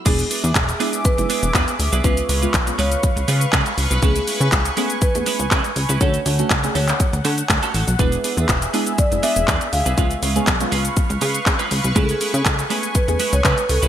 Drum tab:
CC |x---------------|----------------|----------------|----------------|
HH |xxoxxxoxxxoxxxox|xxoxxxoxxxoxxxox|xxoxxxoxxxoxxxox|xxoxxxoxxxoxxxox|
SH |xxxxxxxxxxxxxxxx|xxxxxxxxxxxxxxxx|xxxxxxxxxxxxxxxx|xxxxxxxxxxxxxxxx|
CP |----x-------x---|----x-------x---|----x-------x---|----x--x----x---|
BD |o---o---o---o---|o---o---o---o---|o---o---o---o---|o---o---o---o---|

CC |----------------|----------------|----------------|
HH |xxoxxxoxxxoxxxox|xxoxxxoxxxoxxxox|xxoxxxoxxxoxxxox|
SH |xxxxxxxxxxxxxxxx|xxxxxxxxxxxxxxxx|xxxxxxxxxxxxxxxx|
CP |----x-------x---|----x-------x---|----x-------x---|
BD |o---o---o---o---|o---o---o---o---|o---o---o---o---|